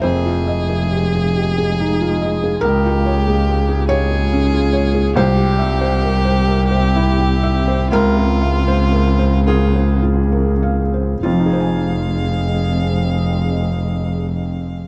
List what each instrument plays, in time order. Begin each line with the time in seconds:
0.02 double bass F1, felt piano F2 C5, ambient pad G#3 F4 D#5, violin G#4
0.26 felt piano F4
0.48 felt piano D#5
0.70 felt piano G#4
0.92 felt piano G4
1.15 felt piano G#4
1.36 felt piano G4
1.58 felt piano G#4
1.80 felt piano D#4
2.01 felt piano F4
2.22 felt piano D#5
2.44 felt piano G#4
2.61 double bass C#2, felt piano C#2 A#4, violin G4
2.65 ambient pad F5
2.86 felt piano F4
3.06 felt piano C#5
3.27 felt piano G#3
3.49 felt piano G4
3.69 felt piano G#4
3.88 felt piano G4 C#5, violin G#4
4.11 felt piano G#4
4.33 felt piano C#4
4.53 felt piano F4
4.73 felt piano C#5
4.95 felt piano G#4
5.16 felt piano C2 C5, double bass C2, ambient pad C4 G4 E5, violin G4
5.37 felt piano G4
5.59 felt piano E5
5.81 felt piano C5
6.03 felt piano A#4
6.25 felt piano C5
6.48 felt piano A#4
6.71 felt piano C5
6.96 felt piano E4
7.19 felt piano G4
7.43 felt piano E5
7.68 felt piano C5
7.90 double bass C#2, felt piano C#2 A#4, violin F4, ambient pad F4 F5
8.17 felt piano A#4
8.41 felt piano F5
8.68 felt piano C5
8.92 felt piano A#4
9.19 felt piano C5
9.46 violin F4, felt piano G#4 A#4
9.75 felt piano C5
10.03 felt piano F4
10.32 felt piano A#4
10.63 felt piano F5
10.94 felt piano C5
11.22 double bass F1, felt piano F2 F4, ambient pad C4 G#4 D#5, violin F5
11.32 felt piano F3
11.39 felt piano D#4
11.46 felt piano G#4
11.53 felt piano C5
11.60 felt piano G#5